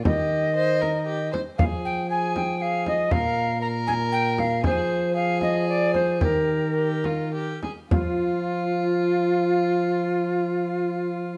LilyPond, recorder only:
\new Staff \with { instrumentName = "Recorder" } { \time 3/4 \key ees \mixolydian \tempo 4 = 115 ees''2~ ees''8 r8 | f''8 g''8 aes''8 g''8 f''8 ees''8 | f''4 bes''8 aes''8 g''8 f''8 | c''4 f''8 ees''8 d''8 c''8 |
bes'2~ bes'8 r8 | f'2.~ | f'2. | }